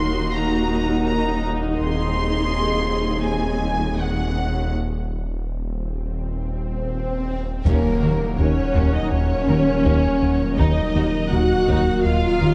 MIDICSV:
0, 0, Header, 1, 14, 480
1, 0, Start_track
1, 0, Tempo, 731707
1, 1187, Time_signature, 4, 2, 24, 8
1, 8228, End_track
2, 0, Start_track
2, 0, Title_t, "Violin section"
2, 0, Program_c, 0, 48
2, 5022, Note_on_c, 0, 70, 54
2, 5478, Note_off_c, 0, 70, 0
2, 5505, Note_on_c, 0, 73, 51
2, 5866, Note_off_c, 0, 73, 0
2, 5868, Note_on_c, 0, 75, 52
2, 5987, Note_off_c, 0, 75, 0
2, 5992, Note_on_c, 0, 73, 60
2, 6930, Note_off_c, 0, 73, 0
2, 6949, Note_on_c, 0, 75, 57
2, 7418, Note_off_c, 0, 75, 0
2, 7424, Note_on_c, 0, 78, 56
2, 7903, Note_on_c, 0, 77, 58
2, 7905, Note_off_c, 0, 78, 0
2, 8228, Note_off_c, 0, 77, 0
2, 8228, End_track
3, 0, Start_track
3, 0, Title_t, "Violin section"
3, 0, Program_c, 1, 48
3, 0, Note_on_c, 1, 84, 83
3, 208, Note_off_c, 1, 84, 0
3, 225, Note_on_c, 1, 82, 71
3, 693, Note_off_c, 1, 82, 0
3, 700, Note_on_c, 1, 82, 65
3, 939, Note_off_c, 1, 82, 0
3, 1179, Note_on_c, 1, 84, 82
3, 2117, Note_off_c, 1, 84, 0
3, 2143, Note_on_c, 1, 80, 63
3, 2625, Note_off_c, 1, 80, 0
3, 2625, Note_on_c, 1, 78, 60
3, 3106, Note_off_c, 1, 78, 0
3, 5018, Note_on_c, 1, 61, 51
3, 5245, Note_off_c, 1, 61, 0
3, 5254, Note_on_c, 1, 66, 33
3, 5306, Note_off_c, 1, 66, 0
3, 5498, Note_on_c, 1, 70, 35
3, 5550, Note_off_c, 1, 70, 0
3, 5738, Note_on_c, 1, 61, 53
3, 5965, Note_off_c, 1, 61, 0
3, 6222, Note_on_c, 1, 70, 40
3, 6274, Note_off_c, 1, 70, 0
3, 6464, Note_on_c, 1, 61, 52
3, 6688, Note_off_c, 1, 61, 0
3, 6937, Note_on_c, 1, 63, 56
3, 7165, Note_off_c, 1, 63, 0
3, 7183, Note_on_c, 1, 66, 38
3, 7236, Note_off_c, 1, 66, 0
3, 7429, Note_on_c, 1, 70, 38
3, 7482, Note_off_c, 1, 70, 0
3, 7664, Note_on_c, 1, 63, 50
3, 7888, Note_off_c, 1, 63, 0
3, 8140, Note_on_c, 1, 70, 47
3, 8192, Note_off_c, 1, 70, 0
3, 8228, End_track
4, 0, Start_track
4, 0, Title_t, "Analog synth pad"
4, 0, Program_c, 2, 89
4, 0, Note_on_c, 2, 58, 66
4, 0, Note_on_c, 2, 63, 63
4, 0, Note_on_c, 2, 70, 62
4, 0, Note_on_c, 2, 78, 60
4, 1160, Note_off_c, 2, 70, 0
4, 1161, Note_off_c, 2, 58, 0
4, 1186, Note_off_c, 2, 78, 0
4, 1188, Note_on_c, 2, 60, 62
4, 1190, Note_on_c, 2, 75, 62
4, 1191, Note_on_c, 2, 68, 63
4, 3105, Note_off_c, 2, 63, 0
4, 3107, Note_off_c, 2, 60, 0
4, 3108, Note_off_c, 2, 75, 0
4, 3109, Note_off_c, 2, 68, 0
4, 5016, Note_on_c, 2, 70, 67
4, 5019, Note_on_c, 2, 78, 69
4, 5021, Note_on_c, 2, 54, 68
4, 5022, Note_on_c, 2, 58, 63
4, 6916, Note_off_c, 2, 78, 0
4, 6954, Note_on_c, 2, 75, 70
4, 8228, Note_off_c, 2, 54, 0
4, 8228, Note_off_c, 2, 58, 0
4, 8228, Note_off_c, 2, 70, 0
4, 8228, Note_off_c, 2, 75, 0
4, 8228, End_track
5, 0, Start_track
5, 0, Title_t, "French horn section"
5, 0, Program_c, 3, 60
5, 5020, Note_on_c, 3, 58, 65
5, 5477, Note_off_c, 3, 58, 0
5, 5502, Note_on_c, 3, 61, 57
5, 5857, Note_off_c, 3, 61, 0
5, 5877, Note_on_c, 3, 63, 55
5, 5982, Note_on_c, 3, 61, 73
5, 5992, Note_off_c, 3, 63, 0
5, 6943, Note_on_c, 3, 63, 69
5, 6944, Note_off_c, 3, 61, 0
5, 7415, Note_off_c, 3, 63, 0
5, 7423, Note_on_c, 3, 66, 66
5, 7895, Note_off_c, 3, 66, 0
5, 7904, Note_on_c, 3, 65, 76
5, 8228, Note_off_c, 3, 65, 0
5, 8228, End_track
6, 0, Start_track
6, 0, Title_t, "Viola section"
6, 0, Program_c, 4, 48
6, 0, Note_on_c, 4, 63, 56
6, 0, Note_on_c, 4, 66, 55
6, 1159, Note_off_c, 4, 66, 0
6, 1184, Note_on_c, 4, 68, 53
6, 3079, Note_off_c, 4, 63, 0
6, 3079, Note_off_c, 4, 68, 0
6, 5017, Note_on_c, 4, 58, 54
6, 5476, Note_off_c, 4, 58, 0
6, 5502, Note_on_c, 4, 61, 52
6, 5858, Note_on_c, 4, 63, 51
6, 5864, Note_off_c, 4, 61, 0
6, 5975, Note_on_c, 4, 61, 65
6, 5982, Note_off_c, 4, 63, 0
6, 6936, Note_on_c, 4, 63, 57
6, 6941, Note_off_c, 4, 61, 0
6, 7412, Note_off_c, 4, 63, 0
6, 7418, Note_on_c, 4, 66, 60
6, 7898, Note_on_c, 4, 65, 61
6, 7902, Note_off_c, 4, 66, 0
6, 8228, Note_off_c, 4, 65, 0
6, 8228, End_track
7, 0, Start_track
7, 0, Title_t, "Analog synth bass"
7, 0, Program_c, 5, 38
7, 5026, Note_on_c, 5, 39, 75
7, 5170, Note_off_c, 5, 39, 0
7, 5267, Note_on_c, 5, 51, 50
7, 5411, Note_off_c, 5, 51, 0
7, 5510, Note_on_c, 5, 39, 54
7, 5653, Note_off_c, 5, 39, 0
7, 5747, Note_on_c, 5, 39, 75
7, 5891, Note_off_c, 5, 39, 0
7, 5983, Note_on_c, 5, 39, 54
7, 6128, Note_off_c, 5, 39, 0
7, 6226, Note_on_c, 5, 51, 54
7, 6370, Note_off_c, 5, 51, 0
7, 6466, Note_on_c, 5, 39, 78
7, 6610, Note_off_c, 5, 39, 0
7, 6707, Note_on_c, 5, 39, 58
7, 6850, Note_off_c, 5, 39, 0
7, 6949, Note_on_c, 5, 39, 78
7, 7093, Note_off_c, 5, 39, 0
7, 7187, Note_on_c, 5, 51, 52
7, 7331, Note_off_c, 5, 51, 0
7, 7430, Note_on_c, 5, 39, 59
7, 7573, Note_off_c, 5, 39, 0
7, 7672, Note_on_c, 5, 39, 81
7, 7814, Note_off_c, 5, 39, 0
7, 7905, Note_on_c, 5, 39, 58
7, 8049, Note_off_c, 5, 39, 0
7, 8151, Note_on_c, 5, 51, 60
7, 8228, Note_off_c, 5, 51, 0
7, 8228, End_track
8, 0, Start_track
8, 0, Title_t, "Cello section"
8, 0, Program_c, 6, 48
8, 0, Note_on_c, 6, 39, 54
8, 1163, Note_off_c, 6, 39, 0
8, 1185, Note_on_c, 6, 39, 58
8, 3080, Note_off_c, 6, 39, 0
8, 5028, Note_on_c, 6, 39, 53
8, 5080, Note_off_c, 6, 39, 0
8, 5267, Note_on_c, 6, 39, 38
8, 5319, Note_off_c, 6, 39, 0
8, 5500, Note_on_c, 6, 39, 39
8, 5552, Note_off_c, 6, 39, 0
8, 5737, Note_on_c, 6, 39, 55
8, 5789, Note_off_c, 6, 39, 0
8, 6223, Note_on_c, 6, 39, 39
8, 6275, Note_off_c, 6, 39, 0
8, 6460, Note_on_c, 6, 39, 53
8, 6513, Note_off_c, 6, 39, 0
8, 6939, Note_on_c, 6, 39, 54
8, 6991, Note_off_c, 6, 39, 0
8, 7190, Note_on_c, 6, 39, 42
8, 7243, Note_off_c, 6, 39, 0
8, 7423, Note_on_c, 6, 39, 40
8, 7476, Note_off_c, 6, 39, 0
8, 7664, Note_on_c, 6, 39, 62
8, 7717, Note_off_c, 6, 39, 0
8, 8142, Note_on_c, 6, 39, 41
8, 8195, Note_off_c, 6, 39, 0
8, 8228, End_track
9, 0, Start_track
9, 0, Title_t, "Double bass section"
9, 0, Program_c, 7, 48
9, 5024, Note_on_c, 7, 39, 54
9, 5076, Note_off_c, 7, 39, 0
9, 5266, Note_on_c, 7, 39, 41
9, 5318, Note_off_c, 7, 39, 0
9, 5499, Note_on_c, 7, 39, 41
9, 5551, Note_off_c, 7, 39, 0
9, 5741, Note_on_c, 7, 39, 52
9, 5794, Note_off_c, 7, 39, 0
9, 6222, Note_on_c, 7, 39, 40
9, 6275, Note_off_c, 7, 39, 0
9, 6461, Note_on_c, 7, 39, 51
9, 6513, Note_off_c, 7, 39, 0
9, 6941, Note_on_c, 7, 39, 56
9, 6993, Note_off_c, 7, 39, 0
9, 7182, Note_on_c, 7, 39, 41
9, 7235, Note_off_c, 7, 39, 0
9, 7420, Note_on_c, 7, 39, 40
9, 7473, Note_off_c, 7, 39, 0
9, 7657, Note_on_c, 7, 39, 56
9, 7710, Note_off_c, 7, 39, 0
9, 8140, Note_on_c, 7, 39, 44
9, 8193, Note_off_c, 7, 39, 0
9, 8228, End_track
10, 0, Start_track
10, 0, Title_t, "Tuba"
10, 0, Program_c, 8, 58
10, 5021, Note_on_c, 8, 39, 54
10, 5118, Note_off_c, 8, 39, 0
10, 5268, Note_on_c, 8, 39, 37
10, 5364, Note_off_c, 8, 39, 0
10, 5505, Note_on_c, 8, 39, 41
10, 5601, Note_off_c, 8, 39, 0
10, 5743, Note_on_c, 8, 39, 57
10, 5840, Note_off_c, 8, 39, 0
10, 6221, Note_on_c, 8, 39, 39
10, 6318, Note_off_c, 8, 39, 0
10, 6462, Note_on_c, 8, 39, 54
10, 6559, Note_off_c, 8, 39, 0
10, 6941, Note_on_c, 8, 39, 59
10, 7038, Note_off_c, 8, 39, 0
10, 7182, Note_on_c, 8, 39, 41
10, 7279, Note_off_c, 8, 39, 0
10, 7420, Note_on_c, 8, 39, 42
10, 7518, Note_off_c, 8, 39, 0
10, 7661, Note_on_c, 8, 39, 61
10, 7758, Note_off_c, 8, 39, 0
10, 8145, Note_on_c, 8, 39, 42
10, 8228, Note_off_c, 8, 39, 0
10, 8228, End_track
11, 0, Start_track
11, 0, Title_t, "Detuned saw bass"
11, 0, Program_c, 10, 39
11, 0, Note_on_c, 10, 27, 58
11, 1161, Note_off_c, 10, 27, 0
11, 1189, Note_on_c, 10, 27, 58
11, 5002, Note_off_c, 10, 27, 0
11, 5024, Note_on_c, 10, 27, 61
11, 8228, Note_off_c, 10, 27, 0
11, 8228, End_track
12, 0, Start_track
12, 0, Title_t, "Impact"
12, 0, Program_c, 11, 103
12, 5025, Note_on_c, 11, 60, 53
12, 6946, Note_off_c, 11, 60, 0
12, 8228, End_track
13, 0, Start_track
13, 0, Title_t, "Swell"
13, 0, Program_c, 12, 103
13, 3107, Note_on_c, 12, 60, 43
13, 5027, Note_off_c, 12, 60, 0
13, 8228, End_track
14, 0, Start_track
14, 0, Title_t, "Taiko and cinematic ensemble drums"
14, 5020, Note_on_c, 9, 41, 80
14, 5085, Note_off_c, 9, 41, 0
14, 5747, Note_on_c, 9, 41, 70
14, 5813, Note_off_c, 9, 41, 0
14, 6465, Note_on_c, 9, 41, 69
14, 6530, Note_off_c, 9, 41, 0
14, 6948, Note_on_c, 9, 41, 81
14, 7013, Note_off_c, 9, 41, 0
14, 7666, Note_on_c, 9, 41, 76
14, 7732, Note_off_c, 9, 41, 0
14, 8228, End_track
0, 0, End_of_file